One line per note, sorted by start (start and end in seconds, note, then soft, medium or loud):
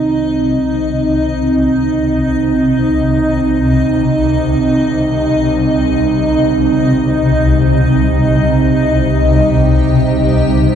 0.00 10.75 C2 medium
0.00 10.75 C3 medium
0.00 10.75 C4 medium
0.00 8.99 D#4 medium
0.00 10.75 D#4 medium
0.00 8.99 D#5 medium
0.00 10.75 D#5 medium
8.95 10.75 G4 medium
8.95 10.75 G5 medium